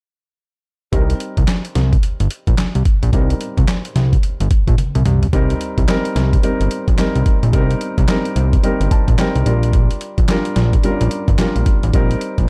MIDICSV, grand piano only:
0, 0, Header, 1, 2, 480
1, 0, Start_track
1, 0, Key_signature, -3, "minor"
1, 0, Tempo, 550459
1, 808, Time_signature, 4, 2, 24, 8
1, 10892, End_track
2, 0, Start_track
2, 0, Title_t, "Grand piano"
2, 0, Program_c, 0, 0
2, 802, Note_on_c, 0, 55, 70
2, 811, Note_on_c, 0, 60, 67
2, 817, Note_on_c, 0, 63, 66
2, 824, Note_on_c, 0, 70, 80
2, 961, Control_c, 0, 64, 127
2, 2690, Note_off_c, 0, 55, 0
2, 2695, Note_off_c, 0, 60, 0
2, 2698, Note_off_c, 0, 63, 0
2, 2701, Note_off_c, 0, 70, 0
2, 2723, Note_on_c, 0, 55, 77
2, 2730, Note_on_c, 0, 60, 67
2, 2737, Note_on_c, 0, 63, 62
2, 2745, Note_on_c, 0, 70, 78
2, 4372, Note_off_c, 0, 55, 0
2, 4376, Note_off_c, 0, 60, 0
2, 4379, Note_off_c, 0, 63, 0
2, 4383, Note_off_c, 0, 70, 0
2, 4419, Control_c, 0, 64, 0
2, 4647, Note_on_c, 0, 55, 94
2, 4651, Note_on_c, 0, 60, 86
2, 4655, Note_on_c, 0, 63, 85
2, 4658, Note_on_c, 0, 70, 101
2, 4831, Control_c, 0, 64, 127
2, 5103, Note_off_c, 0, 55, 0
2, 5105, Note_off_c, 0, 60, 0
2, 5107, Note_off_c, 0, 63, 0
2, 5109, Note_off_c, 0, 70, 0
2, 5126, Note_on_c, 0, 55, 90
2, 5130, Note_on_c, 0, 60, 80
2, 5134, Note_on_c, 0, 63, 81
2, 5138, Note_on_c, 0, 70, 104
2, 5583, Note_off_c, 0, 55, 0
2, 5585, Note_off_c, 0, 60, 0
2, 5587, Note_off_c, 0, 63, 0
2, 5589, Note_off_c, 0, 70, 0
2, 5607, Note_on_c, 0, 55, 88
2, 5610, Note_on_c, 0, 60, 81
2, 5613, Note_on_c, 0, 63, 77
2, 5618, Note_on_c, 0, 70, 98
2, 6063, Note_off_c, 0, 55, 0
2, 6065, Note_off_c, 0, 60, 0
2, 6067, Note_off_c, 0, 63, 0
2, 6069, Note_off_c, 0, 70, 0
2, 6086, Note_on_c, 0, 55, 89
2, 6090, Note_on_c, 0, 60, 81
2, 6094, Note_on_c, 0, 63, 79
2, 6097, Note_on_c, 0, 70, 98
2, 6543, Note_off_c, 0, 55, 0
2, 6545, Note_off_c, 0, 60, 0
2, 6547, Note_off_c, 0, 63, 0
2, 6548, Note_off_c, 0, 70, 0
2, 6569, Note_on_c, 0, 55, 91
2, 6573, Note_on_c, 0, 60, 85
2, 6576, Note_on_c, 0, 63, 89
2, 6580, Note_on_c, 0, 70, 102
2, 7024, Note_off_c, 0, 55, 0
2, 7026, Note_off_c, 0, 60, 0
2, 7028, Note_off_c, 0, 63, 0
2, 7030, Note_off_c, 0, 70, 0
2, 7048, Note_on_c, 0, 55, 90
2, 7052, Note_on_c, 0, 60, 86
2, 7055, Note_on_c, 0, 63, 78
2, 7058, Note_on_c, 0, 70, 100
2, 7504, Note_off_c, 0, 55, 0
2, 7505, Note_off_c, 0, 60, 0
2, 7507, Note_off_c, 0, 63, 0
2, 7509, Note_off_c, 0, 70, 0
2, 7527, Note_on_c, 0, 55, 95
2, 7532, Note_on_c, 0, 60, 83
2, 7534, Note_on_c, 0, 63, 80
2, 7539, Note_on_c, 0, 70, 94
2, 7774, Note_on_c, 0, 81, 68
2, 7983, Note_off_c, 0, 55, 0
2, 7986, Note_off_c, 0, 60, 0
2, 7986, Note_off_c, 0, 63, 0
2, 7989, Note_off_c, 0, 70, 0
2, 7995, Note_off_c, 0, 81, 0
2, 8007, Note_on_c, 0, 55, 88
2, 8011, Note_on_c, 0, 60, 83
2, 8014, Note_on_c, 0, 79, 76
2, 8015, Note_on_c, 0, 63, 75
2, 8019, Note_on_c, 0, 70, 95
2, 8234, Note_off_c, 0, 79, 0
2, 8236, Note_off_c, 0, 55, 0
2, 8246, Note_off_c, 0, 70, 0
2, 8249, Note_on_c, 0, 55, 86
2, 8250, Note_off_c, 0, 60, 0
2, 8252, Note_off_c, 0, 63, 0
2, 8253, Note_on_c, 0, 62, 80
2, 8254, Note_on_c, 0, 74, 68
2, 8257, Note_on_c, 0, 65, 80
2, 8258, Control_c, 0, 64, 0
2, 8259, Note_on_c, 0, 70, 90
2, 8403, Control_c, 0, 64, 127
2, 8475, Note_off_c, 0, 74, 0
2, 8932, Note_off_c, 0, 55, 0
2, 8934, Note_off_c, 0, 62, 0
2, 8936, Note_off_c, 0, 65, 0
2, 8937, Note_off_c, 0, 70, 0
2, 8968, Note_on_c, 0, 55, 87
2, 8972, Note_on_c, 0, 62, 86
2, 8975, Note_on_c, 0, 65, 83
2, 8980, Note_on_c, 0, 70, 99
2, 9424, Note_off_c, 0, 55, 0
2, 9426, Note_off_c, 0, 62, 0
2, 9427, Note_off_c, 0, 65, 0
2, 9430, Note_off_c, 0, 70, 0
2, 9449, Note_on_c, 0, 55, 90
2, 9452, Note_on_c, 0, 61, 67
2, 9456, Note_on_c, 0, 65, 84
2, 9460, Note_on_c, 0, 70, 101
2, 9510, Note_on_c, 0, 62, 82
2, 9521, Note_off_c, 0, 61, 0
2, 9904, Note_off_c, 0, 55, 0
2, 9908, Note_off_c, 0, 65, 0
2, 9910, Note_off_c, 0, 70, 0
2, 9919, Note_off_c, 0, 62, 0
2, 9928, Note_on_c, 0, 55, 85
2, 9933, Note_on_c, 0, 62, 78
2, 9936, Note_on_c, 0, 65, 83
2, 9939, Note_on_c, 0, 70, 91
2, 10384, Note_off_c, 0, 55, 0
2, 10386, Note_off_c, 0, 62, 0
2, 10388, Note_off_c, 0, 65, 0
2, 10390, Note_off_c, 0, 70, 0
2, 10408, Note_on_c, 0, 55, 89
2, 10413, Note_on_c, 0, 60, 85
2, 10415, Note_on_c, 0, 63, 82
2, 10419, Note_on_c, 0, 70, 103
2, 10420, Control_c, 0, 64, 0
2, 10565, Control_c, 0, 64, 127
2, 10864, Note_off_c, 0, 55, 0
2, 10866, Note_off_c, 0, 60, 0
2, 10867, Note_off_c, 0, 63, 0
2, 10869, Note_off_c, 0, 70, 0
2, 10892, End_track
0, 0, End_of_file